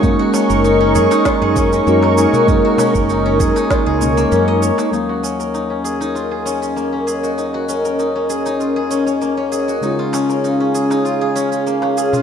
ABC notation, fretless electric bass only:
X:1
M:4/4
L:1/16
Q:1/4=98
K:Ebm
V:1 name="Fretless electric bass" clef=bass
G,, z2 G,,,3 G,, z2 G,,2 z G,,2 z2 | G,, z2 G,,,3 G,, z2 D,,2 z G,,2 z2 | z16 | z16 |
z16 |]